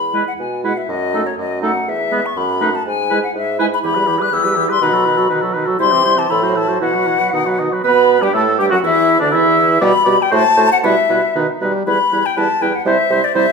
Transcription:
Already playing: bassoon E2, flute B5
0.13 french horn G#3, clarinet E4, oboe B4
0.28 flute F#5
0.39 bassoon B2, flute G#5
0.64 french horn G#3, clarinet E4, oboe B4, flute F#5
0.77 flute E5
0.89 bassoon F#2, flute D#5
1.13 french horn A3, clarinet D#4, oboe A4
1.26 flute C#5
1.38 bassoon F#2, flute D#5
1.62 french horn A3, clarinet D#4, oboe A4, flute F#5
1.88 bassoon E2, flute E5
2.11 french horn G#3, clarinet B3, oboe B4
2.26 flute C#6
2.37 bassoon F#2, flute B5
2.61 french horn A3, clarinet D#4, oboe B4
2.75 flute A5
2.86 bassoon G#2, flute G#5
3.10 french horn G#3, clarinet E4, oboe B4
3.24 flute F#5
3.35 bassoon G#2, flute E5
3.59 french horn G#3, clarinet E4, oboe B4, flute G#5
3.74 flute B5
3.83 bassoon E2, french horn E3, clarinet E4, oboe G4, flute B5
3.95 french horn G3, clarinet G4, oboe B4
4.07 french horn E3, clarinet E4, oboe G4
4.19 french horn G3, clarinet G4, oboe B4, flute F#6
4.32 bassoon E2, french horn E3, clarinet E4, oboe G4, flute E6
4.44 french horn G3, clarinet G4, oboe B4
4.56 french horn E3, clarinet E4, oboe G4
4.69 french horn G3, clarinet G4, oboe B4, flute C6
4.81 bassoon B2, french horn D#3, clarinet D#4, oboe B4, flute B5
4.93 french horn F#3, clarinet F#4, oboe A4
5.05 french horn D#3, clarinet D#4, oboe B4
5.17 french horn F#3, clarinet F#4, oboe A4
5.30 bassoon B2, french horn D#3, clarinet D#4, oboe B4
5.42 french horn F#3, clarinet F#4, oboe A4
5.54 french horn D#3, clarinet D#4, oboe B4
5.66 french horn F#3, clarinet F#4, oboe A4
5.79 bassoon C3, french horn G3, clarinet E4, oboe C5, flute C6
5.91 french horn E3, clarinet C4, oboe G4
6.03 french horn G3, clarinet E4, oboe C5
6.16 french horn E3, clarinet C4, oboe G4, flute A5
6.29 bassoon A2, french horn E3, clarinet E4, oboe A4, flute B5
6.42 french horn F#3, clarinet F#4, oboe C5
6.54 french horn E3, clarinet E4, oboe A4, flute A5
6.68 french horn F#3, clarinet F#4, oboe C5
6.80 bassoon B2, french horn E3, clarinet E4, oboe F#4, flute F#5
6.94 french horn F#3, clarinet F#4, oboe B4
7.06 french horn E3, clarinet E4, oboe F#4
7.19 french horn F#3, clarinet F#4, oboe B4
7.33 bassoon B2, french horn D#3, clarinet D#4, oboe D#5
7.46 french horn F#3, clarinet F#4, oboe B4
7.58 french horn D#3, clarinet D#4, oboe D#5
7.71 french horn F#3, clarinet F#4, oboe B4
7.84 bassoon B2, french horn B3, clarinet B4, oboe B4, flute B5
8.21 bassoon G2, french horn G3, clarinet G4, oboe G4, flute G5
8.33 bassoon A2, french horn A3, clarinet A4, oboe A4, flute A5
8.59 bassoon G2, french horn G3, clarinet G4, oboe G4, flute G5
8.70 bassoon F#2, french horn F#3, oboe F#4, clarinet F#4, flute F#5
8.83 bassoon E2, french horn E3, clarinet E4, oboe E4, flute E5
9.19 bassoon D2, french horn D3, oboe D4, clarinet D4, flute D5
9.31 bassoon E2, french horn E3, oboe E4, clarinet E4, flute E5
9.81 bassoon B2, french horn G3, clarinet G4, oboe D5, flute B5
10.05 bassoon B2, french horn G3, clarinet G4, oboe D5
10.22 flute G5
10.31 bassoon A2, french horn A3, clarinet F#4, oboe C5, flute A5
10.57 bassoon A2, french horn A3, clarinet F#4, oboe C5
10.72 flute F#5
10.83 bassoon B2, french horn G3, clarinet E4, oboe B4, flute E5
11.10 bassoon B2, french horn G3, clarinet E4, oboe B4
11.35 bassoon B2, french horn D#3, clarinet D#4, oboe B4
11.61 bassoon B2, french horn G3, clarinet D#4, oboe B4
11.87 bassoon E2, french horn G3, clarinet E4, oboe B4, flute B5
12.12 bassoon E2, french horn G3, clarinet E4, oboe B4
12.26 flute G5
12.37 bassoon E2, french horn G3, clarinet E4, oboe B4, flute A5
12.61 bassoon E2, french horn G3, clarinet E4, oboe B4, flute G5
12.75 flute F#5
12.85 bassoon C3, french horn G3, clarinet E4, oboe C5, flute E5
13.10 bassoon C3, french horn G3, clarinet E4, oboe C5
13.24 flute D5
13.35 bassoon C3, french horn G3, clarinet E4, oboe C5, flute E5

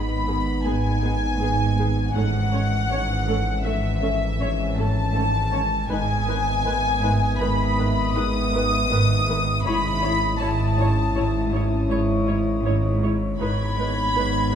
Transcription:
Already playing: double bass section G#1, sub bass G#1, cello section G#2, french horn section B3 D#4, violin section B5
0.27 cello section G#2, viola section B3 G#4
0.63 double bass section G#1, cello section G#2 G#3, viola section B3 G#4, violin section G#5
1.02 cello section G#2, viola section B3 G#4
1.39 double bass section G#1, cello section G#2, viola section B3 G#4
1.78 cello section G#3, viola section B3 G#4
2.12 sub bass G#1, double bass section G#1, cello section G#2, french horn section E3 C#4, viola section C#4 A4, violin section F#5
2.52 cello section G#3, viola section C#4 C#5
2.90 double bass section G#1, cello section G#2 G#3, viola section C#4 C#5
3.27 cello section G#2, viola section C#4 A4
3.64 double bass section G#1, cello section G#2, viola section C#4 A4, violin section E5
4.02 cello section G#2, viola section C#4 A4
4.40 double bass section G#1, cello section G#2 G#3, viola section C#4 C#5
4.77 cello section G#2, viola section C#4 A4, violin section A5
5.15 double bass section G#1, cello section G#2, viola section C#4 A4
5.52 cello section G#3, viola section C#4 C#5
5.87 double bass section G#1, sub bass G#1, timpani G#2, cello section G#2, french horn section D#3 B3, viola section D#4 B4, violin section E5 G#5 D#6
6.28 viola section D#3 B4, cello section G#3
6.65 double bass section G#1, cello section G#2 G#3, viola section D#3 B4
7.03 cello section G#2, viola section D#3 B4
7.39 double bass section G#1, cello section G#2, viola section D#3 B4, violin section B5
7.78 cello section G#2, viola section D#3 B4
8.15 double bass section G#1, cello section G#2 G#3, viola section D#3 B4, violin section D#6
8.54 cello section G#2, viola section D#3 B4
8.90 double bass section G#1, cello section G#2, viola section D#3 B4
9.28 viola section D#3 B4, cello section G#3
9.64 double bass section G#1, sub bass G#1, timpani G#2, cello section G#2, french horn section C#4 E4, viola section E4 C#5, violin section B5
10.02 cello section G#3, viola section E4 C#5
10.38 double bass section G#1, cello section G#2 G#3, viola section E4 C#5, violin section A5
10.77 cello section G#2, viola section E4 C#5
11.14 double bass section G#1, cello section G#2, viola section E4 C#5
11.52 cello section G#2, viola section E4 C#5
11.89 double bass section G#1, cello section G#2 G#3, viola section E4 C#5, vibraphone C#5 C#6
12.27 cello section G#2, viola section E4 C#5
12.63 double bass section G#1, cello section G#2, viola section E4 C#5
13.02 cello section G#3, viola section E4 C#5
13.39 double bass section G#1, sub bass G#1, cello section G#2, french horn section B3 D#4, viola section D#4 B4, violin section B5 G#6
13.78 cello section G#3, viola section D#4 B4
14.15 double bass section G#1, cello section G#2 G#3, viola section D#4 B4, violin section B6
14.52 cello section G#2

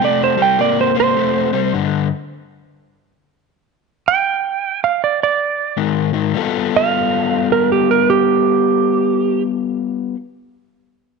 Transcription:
0.01 overdriven electric guitar C3 A3, electric slide guitar D5
0.24 electric slide guitar C5
0.37 overdriven electric guitar C3 G3
0.42 electric slide guitar G5
0.58 overdriven electric guitar C3 A#3, electric slide guitar D5
0.81 electric slide guitar C5
0.95 overdriven electric guitar C3 A#3
1.00 electric slide guitar C5
1.16 overdriven electric guitar C3 A3
1.53 overdriven electric guitar C3 G3
1.74 overdriven electric guitar G2 D3
4.08 electric slide guitar G5
4.84 electric slide guitar F5
5.04 electric slide guitar D5
5.23 electric slide guitar D5
5.77 overdriven electric guitar G#2 D#3
6.13 overdriven electric guitar G#2 D#3
6.34 overdriven electric guitar G3 B3 F4
6.38 overdriven electric guitar A4
6.76 electric slide guitar F5
7.52 electric slide guitar A#4
7.72 electric slide guitar G4
7.91 electric slide guitar A#4
8.10 electric slide guitar G4

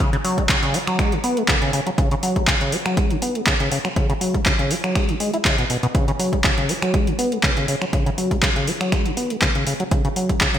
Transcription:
0.00 acid bass C#3, kick, closed hi-hat
0.13 acid bass C#3, closed hi-hat
0.25 acid bass F#3, open hi-hat
0.38 acid bass G#3, kick, closed hi-hat
0.49 acid bass C#3, kick, clap, closed hi-hat
0.63 acid bass C#3, closed hi-hat
0.74 acid bass G#3, open hi-hat
0.87 acid bass F#3, finger snap, closed hi-hat
0.99 acid bass G#3, finger snap, kick, closed hi-hat
1.12 acid bass C#3, closed hi-hat
1.24 acid bass B3, open hi-hat
1.37 acid bass G#3, closed hi-hat
1.48 acid bass C#3, kick, clap, closed hi-hat
1.62 acid bass C#3, closed hi-hat
1.73 acid bass C#3, open hi-hat
1.87 acid bass F#3, closed hi-hat
1.98 acid bass C#3, kick, closed hi-hat
2.11 acid bass C#3, closed hi-hat
2.23 acid bass F#3, open hi-hat
2.36 acid bass G#3, kick, closed hi-hat
2.47 acid bass C#3, kick, clap, closed hi-hat
2.61 acid bass C#3, closed hi-hat
2.72 acid bass G#3, open hi-hat
2.86 acid bass F#3, finger snap, closed hi-hat
2.97 acid bass G#3, kick, closed hi-hat
3.10 acid bass C#3, closed hi-hat
3.22 acid bass B3, open hi-hat
3.35 acid bass G#3, closed hi-hat
3.47 acid bass C#3, kick, clap, closed hi-hat
3.60 acid bass C#3, closed hi-hat
3.72 acid bass C#3, open hi-hat
3.85 acid bass F#3, finger snap, closed hi-hat
3.96 acid bass C#3, kick, closed hi-hat
4.10 acid bass C#3, closed hi-hat
4.21 acid bass F#3, open hi-hat
4.34 acid bass G#3, kick, closed hi-hat
4.46 acid bass C#3, kick, clap, closed hi-hat
4.59 acid bass C#3, closed hi-hat
4.71 acid bass G#3, open hi-hat
4.84 acid bass F#3, finger snap, closed hi-hat
4.95 acid bass G#3, finger snap, kick, closed hi-hat
5.09 acid bass C#3, closed hi-hat
5.20 acid bass G#3, open hi-hat
5.34 acid bass E4, closed hi-hat
5.45 acid bass C#3, kick, clap, closed hi-hat
5.58 acid bass B2, closed hi-hat
5.70 acid bass B2, open hi-hat
5.83 acid bass B2, closed hi-hat
5.95 acid bass C#3, kick, closed hi-hat
6.08 acid bass C#3, closed hi-hat
6.19 acid bass F#3, open hi-hat
6.33 acid bass G#3, kick, closed hi-hat
6.44 acid bass C#3, kick, clap, closed hi-hat
6.58 acid bass C#3, closed hi-hat
6.69 acid bass G#3, open hi-hat
6.82 acid bass F#3, finger snap, closed hi-hat
6.94 acid bass G#3, kick, closed hi-hat
7.07 acid bass C#3, closed hi-hat
7.19 acid bass B3, open hi-hat
7.32 acid bass G#3, closed hi-hat
7.43 acid bass C#3, kick, clap, closed hi-hat
7.57 acid bass C#3, closed hi-hat
7.68 acid bass C#3, open hi-hat
7.82 acid bass F#3, finger snap, closed hi-hat
7.93 acid bass C#3, kick, closed hi-hat
8.06 acid bass C#3, closed hi-hat
8.18 acid bass F#3, open hi-hat
8.31 acid bass G#3, kick, closed hi-hat
8.43 acid bass C#3, kick, clap, closed hi-hat
8.56 acid bass C#3, closed hi-hat
8.68 acid bass G#3, open hi-hat
8.81 acid bass F#3, finger snap, closed hi-hat
8.92 acid bass G#3, finger snap, kick, closed hi-hat
9.06 acid bass C#3, closed hi-hat
9.17 acid bass B3, open hi-hat
9.30 acid bass G#3, closed hi-hat
9.42 acid bass C#3, kick, clap, closed hi-hat
9.55 acid bass C#3, closed hi-hat
9.67 acid bass C#3, open hi-hat
9.80 acid bass F#3, closed hi-hat
9.91 acid bass C#3, kick, closed hi-hat
10.05 acid bass C#3, closed hi-hat
10.16 acid bass F#3, open hi-hat
10.29 acid bass G#3, kick, closed hi-hat
10.41 acid bass C#3, kick, clap, closed hi-hat
10.54 acid bass C#3, closed hi-hat

